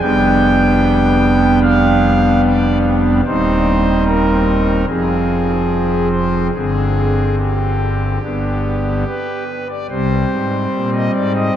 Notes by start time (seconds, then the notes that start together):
0.01 F1 F2 G3 B3 D4 G5
1.63 F5
2.43 D5
3.26 D#1 D#2 G3 C4 D#4 C5
4.06 A#4
4.87 F1 F2 F3 C4 G#4
6.12 C5
6.55 G1 G2 D3 C4 G#4
7.38 G4
8.23 G1 G2 D3 B3 D4
9.07 B4
9.69 D5
9.90 C2 C3 G3 C4 C5
10.31 G#2
10.74 A#2
10.94 D#5
11.15 G#2 D5
11.36 D#5